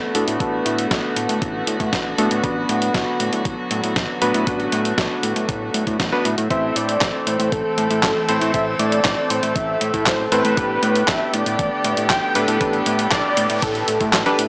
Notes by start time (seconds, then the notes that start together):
Already playing: D3 A3 B3 D4 F#4 A4
0.15 A2 B3 D4 F#4 A4, closed hi-hat
0.27 A2, closed hi-hat
0.40 A1 B3 D4 F#4 A4, kick, closed hi-hat
0.65 A2, closed hi-hat
0.79 closed hi-hat
0.91 A1, kick, snare, closed hi-hat
1.16 A2, closed hi-hat
1.29 A2, closed hi-hat
1.42 A1, kick, closed hi-hat
1.67 A2, closed hi-hat
1.80 A2, kick, closed hi-hat
1.93 A1, kick, snare, closed hi-hat
2.18 A2 B3 D4 F#4 A4, closed hi-hat
2.31 A2, closed hi-hat
2.44 A1 F#3 B3 D4 F#4 B4, kick, closed hi-hat
2.69 A2, closed hi-hat
2.82 closed hi-hat
2.94 A1, kick, snare, closed hi-hat
3.20 A2, closed hi-hat
3.33 A2, closed hi-hat
3.45 A1, kick, closed hi-hat
3.71 A2, closed hi-hat
3.84 A2, closed hi-hat
3.96 A1, kick, snare, closed hi-hat
4.22 A2 B3 D4 F#4 B4, closed hi-hat
4.34 A2, closed hi-hat
4.47 A1 A3 B3 D4 F#4 B4, kick, closed hi-hat
4.60 closed hi-hat
4.72 A2, closed hi-hat
4.85 closed hi-hat
4.98 A1, kick, snare, closed hi-hat
5.23 A2, closed hi-hat
5.36 A2, closed hi-hat
5.49 A1, kick, closed hi-hat
5.74 A2, closed hi-hat
5.87 A2, kick, closed hi-hat
6.00 A1, kick, snare, closed hi-hat
6.12 B3 D4 F#4 B4, snare
6.25 A2, closed hi-hat
6.38 A2, closed hi-hat
6.50 A1 E3 C4 E4 A4 C5 E5, kick, closed hi-hat
6.76 A2 D5, closed hi-hat
6.89 closed hi-hat
7.01 A1, kick, snare, clap, closed hi-hat
7.27 A2 C5, closed hi-hat
7.40 A2, closed hi-hat
7.52 A1 A4, kick, closed hi-hat
7.78 A2, closed hi-hat
7.91 A2, closed hi-hat
8.03 A1 A4, kick, snare, clap, closed hi-hat
8.29 A2 C4 E4 A4 C5, closed hi-hat
8.41 A2, closed hi-hat
8.54 A1 C4 E4 A4 C5 E5, kick, closed hi-hat
8.79 A2 D5, closed hi-hat
8.92 closed hi-hat
9.05 A1, kick, snare, clap, closed hi-hat
9.30 A2 C5, closed hi-hat
9.43 A2, closed hi-hat
9.56 A1 E5, kick, closed hi-hat
9.81 A2, closed hi-hat
9.94 A2, kick, closed hi-hat
10.06 A1 C5, kick, snare, clap, closed hi-hat
10.32 A2 C4 E4 A4 B4 C5, closed hi-hat
10.45 A2, closed hi-hat
10.57 A1 D3 B3 D4 G4 A4 B4, kick, closed hi-hat
10.83 A2, closed hi-hat
10.96 closed hi-hat
11.08 A1 E5, kick, snare, clap, closed hi-hat
11.34 A2 D5, closed hi-hat
11.46 A2, closed hi-hat
11.59 A1, kick, closed hi-hat
11.84 A2, closed hi-hat
11.97 A2, closed hi-hat
12.10 A1 G5, kick, snare, clap, closed hi-hat
12.35 A2 D4 G4 A4 B4, closed hi-hat
12.48 A2, closed hi-hat
12.61 A1 D4 G4 A4 B4, kick, closed hi-hat, noise sweep
12.73 closed hi-hat
12.86 A2, closed hi-hat
12.99 closed hi-hat
13.11 A1 D5, kick, snare, clap, closed hi-hat
13.37 A2, closed hi-hat
13.50 A2, closed hi-hat
13.62 A1 A4, kick, closed hi-hat
13.75 closed hi-hat
13.88 A2, closed hi-hat
14.00 A2, kick, closed hi-hat
14.13 A1, snare, clap, closed hi-hat
14.26 D4 G4 A4 B4, snare, closed hi-hat
14.39 A2, closed hi-hat